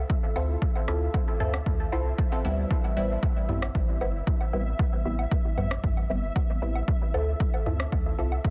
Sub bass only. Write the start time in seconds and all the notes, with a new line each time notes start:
0.36 D2
0.88 D2
1.40 D2
1.66 D2
1.92 C2
2.45 D2
2.97 A1
3.49 A1
3.75 A1
4.01 G1
4.53 A1
5.05 A1
5.58 A1
5.84 A1
6.10 G1
6.62 A1
7.14 D2
7.66 D2
7.92 D2
8.18 C2